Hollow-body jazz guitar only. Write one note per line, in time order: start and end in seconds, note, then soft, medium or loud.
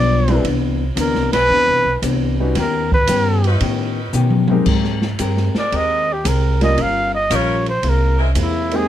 0.00 0.29 G2 medium
0.00 0.29 F3 medium
0.00 0.30 B3 medium
0.00 0.30 D4 medium
0.45 0.83 C3 medium
0.45 0.84 E3 medium
0.45 0.84 B3 medium
0.45 0.84 D4 medium
0.95 1.34 C3 medium
0.95 1.35 E3 medium
0.95 1.35 B3 medium
0.95 1.35 D4 medium
1.48 1.87 C3 medium
1.48 1.88 E3 medium
1.48 1.88 B3 medium
1.48 1.89 D4 medium
2.02 2.41 C3 medium
2.02 2.41 E3 medium
2.02 2.41 B3 medium
2.02 2.41 D4 medium
2.55 2.94 D#3 medium
2.55 2.94 B3 medium
2.55 2.94 C#4 medium
2.55 2.95 G4 medium
3.08 3.46 D#3 medium
3.08 3.46 B3 medium
3.08 3.47 C#4 medium
3.08 3.47 G4 medium
3.60 3.99 D#3 medium
3.60 3.99 B3 medium
3.60 4.00 C#4 medium
3.60 4.00 G4 medium
4.13 4.52 D#3 medium
4.13 4.52 B3 medium
4.13 4.52 C#4 medium
4.13 4.53 G4 medium
4.66 5.05 G#3 medium
4.66 5.05 C4 medium
4.66 5.05 G4 medium
4.66 5.06 A#4 medium
5.19 5.57 G#3 medium
5.19 5.58 C4 medium
5.19 5.58 G4 medium
5.19 5.58 A#4 medium
5.71 6.10 G#3 soft
5.71 6.11 C4 medium
5.71 6.11 G4 medium
5.71 6.11 A#4 medium
6.24 6.63 G#3 medium
6.24 6.63 C4 medium
6.24 6.63 G4 medium
6.24 6.64 A#4 medium
6.76 7.15 G3 medium
6.76 7.16 C#4 medium
6.76 7.16 F4 soft
6.76 7.16 A#4 medium
7.30 7.69 G3 medium
7.30 7.69 C#4 medium
7.30 7.69 F4 medium
7.30 7.70 A#4 medium
7.83 8.21 C3 soft
7.83 8.22 G#3 soft
7.83 8.22 A#3 medium
7.83 8.22 E4 soft
8.36 8.74 C3 medium
8.36 8.75 G#3 medium
8.36 8.75 A#3 medium
8.36 8.75 E4 medium